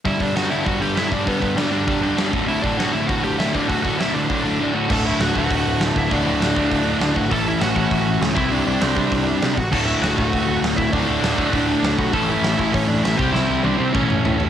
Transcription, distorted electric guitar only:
\new Staff \with { instrumentName = "Distorted electric guitar" } { \clef bass \time 4/4 \key d \major \tempo 4 = 199 <g, d g>8 <g, d g>8 <g, d g>8 <g, d g>8 <g, d g>8 <g, d g>8 <g, d g>8 <g, d g>8 | <g, d g>8 <g, d g>8 <g, d g>8 <g, d g>8 <g, d g>8 <g, d g>8 <g, d g>8 <d, a, d>8 | <d, a, d>8 <d, a, d>8 <d, a, d>8 <d, a, d>8 <d, a, d>8 <d, a, d>8 <d, a, d>8 <d, a, d>8 | <d, a, d>8 <d, a, d>8 <d, a, d>8 <d, a, d>8 <d, a, d>8 <d, a, d>8 <d, a, d>8 <d, a, d>8 |
<d, a, d>1 | <d, a, d>1 | <a, e a>2.~ <a, e a>8 <c g c'>8~ | <c g c'>2.~ <c g c'>8 r8 |
<d, a, d>1 | <d, a, d>1 | <a, e a>2.~ <a, e a>8 <c g c'>8~ | <c g c'>2 <a, e a>2 | }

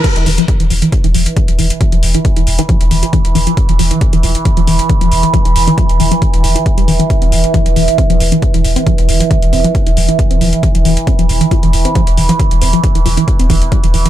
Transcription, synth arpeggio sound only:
\new Staff \with { instrumentName = "Synth arpeggio sound" } { \clef bass \time 4/4 \key c \major \tempo 4 = 136 e16 r16 e16 f16 r16 e16 f16 e16 r16 e16 f16 r16 e16 f16 e16 r16 | e16 f16 r16 e16 f16 e16 r16 e16 f16 r16 e16 f16 e16 r16 e16 f16 | r16 e16 f16 e16 r16 e16 f16 r16 e16 f16 e16 r16 e16 f16 r16 e16 | f16 e16 r16 e16 f16 r16 e16 f16 e16 r16 e16 e16 r16 g16 e16 e16 |
r16 c'16 f16 r16 e16 f16 e16 r16 c'16 f16 r16 e16 f16 e16 r16 c'16 | f16 r16 e16 f16 e16 r16 c'16 f16 r16 e16 f16 e16 r16 c'16 f16 r16 | e16 f16 e16 r16 c'16 f16 r16 e16 f16 e16 r16 c'16 f16 r16 e16 f16 | e16 r16 c'16 f16 r16 e16 f16 e16 r16 c'16 e16 r16 g16 e16 e16 e16 | }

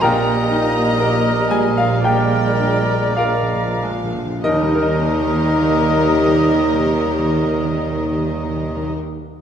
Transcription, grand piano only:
<<
  \new Staff \with { instrumentName = "Grand piano" } { \time 4/4 \key ees \major \tempo 4 = 48 <bes' g'' bes''>4. <aes' aes''>16 <f' f''>16 <g' g''>4 <f' d'' f''>4 | <ees, ees g ees' bes' ees''>1 | }
  \new Staff \with { instrumentName = "Grand piano" } { \time 4/4 \key ees \major bes,8 ees'8 bes'8 g8 bes,8 d'8 bes'8 aes8 | r1 | }
>>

